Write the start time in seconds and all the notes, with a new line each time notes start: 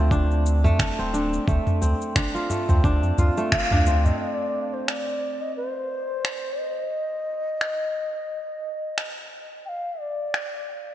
Already playing: D2 A3 C4 D4 F4
0.11 D4, kick, cabasa
0.31 cabasa
0.46 cabasa
0.64 A3, mid tom, cabasa
0.79 finger snap, kick, cabasa
0.98 D1 C4, cabasa
1.14 D4, cabasa
1.33 cabasa
1.48 D2 A3, kick, cabasa
1.67 mid tom, cabasa
1.82 D2 C4, cabasa
2.02 cabasa
2.16 D4, finger snap, kick, cabasa
2.35 F4, cabasa
2.50 A3, udu, cabasa
2.69 D2 C4, mid tom, cabasa
2.84 D4, kick, cabasa
3.03 F2, cabasa
3.18 D2 F4, udu, cabasa
3.37 A3, cabasa
3.52 F5, finger snap, kick, cabasa
3.71 D2 D4, mid tom, cabasa
3.86 C4, cabasa
4.05 D#5, udu, cabasa
4.20 D5
4.74 C5
4.88 D5, finger snap
5.41 D#5
5.57 C5
6.25 finger snap
6.59 D#5
7.61 finger snap
8.98 finger snap
9.65 F5 G5
10.00 D5
10.34 finger snap